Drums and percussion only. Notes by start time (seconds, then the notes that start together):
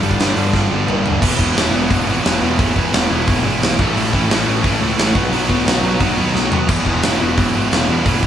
0.03 open hi-hat
0.11 kick
0.20 snare, open hi-hat
0.37 open hi-hat
0.53 kick, snare
0.88 mid tom
1.06 floor tom
1.22 kick, crash
1.39 kick
1.57 snare, open hi-hat
1.91 kick, open hi-hat
2.25 snare, open hi-hat
2.59 kick, open hi-hat
2.76 kick
2.93 snare, open hi-hat
3.28 kick, open hi-hat
3.62 snare, open hi-hat
3.79 kick
3.97 open hi-hat
4.13 kick
4.30 snare, open hi-hat
4.64 kick, open hi-hat
4.99 snare, open hi-hat
5.15 kick
5.33 open hi-hat
5.49 kick
5.67 snare, open hi-hat
6.00 kick, open hi-hat
6.35 snare
6.52 floor tom
6.69 kick, splash, crash
6.86 kick
7.03 snare, open hi-hat
7.38 kick, open hi-hat
7.72 snare, open hi-hat
8.06 kick, open hi-hat
8.23 kick